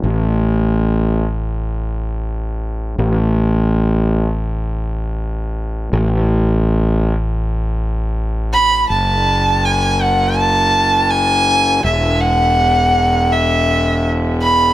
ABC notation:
X:1
M:4/4
L:1/8
Q:1/4=81
K:F#m
V:1 name="Violin"
z8 | z8 | z6 z b | a2 g f a2 g2 |
e f3 e2 z b |]
V:2 name="Fingered electric bass" clef=bass
A,,,8 | A,,,8 | A,,,8 | F,,,8 |
E,,,8 |]